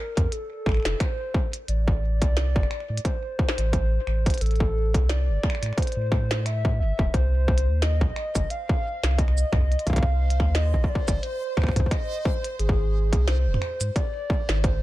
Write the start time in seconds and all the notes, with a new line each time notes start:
Already playing: A#4
0.17 F2, kick, closed hi-hat
0.32 A4, closed hi-hat
0.66 A1, finger snap, kick
0.69 finger snap
0.72 finger snap
0.74 finger snap
0.77 finger snap
0.80 finger snap
0.83 F1, finger snap, snare, closed hi-hat
1.00 C5, finger snap, kick, closed hi-hat
1.34 kick
1.53 closed hi-hat
1.68 A1 D5, closed hi-hat
1.88 kick
2.22 C2, kick, closed hi-hat
2.37 snare, closed hi-hat
2.56 G1, finger snap, kick
2.63 finger snap
2.71 finger snap
2.80 finger snap
2.90 A2
2.97 closed hi-hat
3.05 C5, kick, closed hi-hat
3.39 kick
3.49 snare
3.58 A1, finger snap, closed hi-hat
3.73 kick, closed hi-hat
4.07 A1, finger snap
4.26 kick, closed hi-hat
4.30 closed hi-hat
4.34 closed hi-hat
4.38 A1 A4, closed hi-hat
4.41 closed hi-hat
4.46 closed hi-hat
4.51 closed hi-hat
4.56 closed hi-hat
4.60 kick
4.94 C2, kick, closed hi-hat
5.09 D5, snare, closed hi-hat
5.29 G1
5.43 finger snap, kick
5.50 finger snap
5.55 finger snap
5.63 A2, finger snap, closed hi-hat
5.66 finger snap
5.73 finger snap
5.77 C5, kick, closed hi-hat
5.82 closed hi-hat
5.87 closed hi-hat
5.92 closed hi-hat
5.97 A2
6.12 finger snap, kick
6.31 snare, closed hi-hat
6.46 E5, finger snap, closed hi-hat
6.65 kick
6.80 G1 E5
6.99 E1, kick
7.14 C2 C5, kick, closed hi-hat
7.48 kick
7.58 closed hi-hat
7.67 D#2
7.82 D#5, snare, closed hi-hat
8.01 A#1, finger snap, kick, mid tom
8.16 finger snap
8.35 G1, kick, closed hi-hat, cabasa
8.50 F5, closed hi-hat
8.69 kick
9.03 C2, finger snap, snare, closed hi-hat
9.11 finger snap
9.18 D#5, finger snap, kick, closed hi-hat
9.28 finger snap
9.38 cabasa
9.53 C2, finger snap, kick, mid tom
9.72 closed hi-hat
9.79 closed hi-hat
9.87 C2 F5, kick, closed hi-hat
9.90 kick
9.93 kick
9.96 kick, closed hi-hat
9.98 kick
10.03 kick
10.30 closed hi-hat
10.40 D#2, finger snap, kick
10.55 D#5, snare, closed hi-hat
10.74 A#1, kick
10.84 kick
10.89 D5
10.95 kick
11.08 G1, kick, closed hi-hat, cabasa
11.23 C5, closed hi-hat
11.57 D#2, finger snap, kick
11.62 finger snap, kick
11.67 finger snap, kick
11.72 finger snap
11.76 C2, kick, closed hi-hat, mid tom
11.80 kick
11.86 kick
11.91 D#5, finger snap, kick, closed hi-hat
12.25 C5, kick
12.44 closed hi-hat
12.59 G#1 G#4, closed hi-hat
12.69 kick
13.13 C2, kick, closed hi-hat
13.28 C5, snare, closed hi-hat
13.47 D#1
13.54 finger snap, mid tom
13.62 finger snap
13.81 G#2, closed hi-hat, cabasa
13.96 D5, kick, closed hi-hat
14.30 kick
14.49 G#1, finger snap, snare, closed hi-hat
14.64 C5, kick, closed hi-hat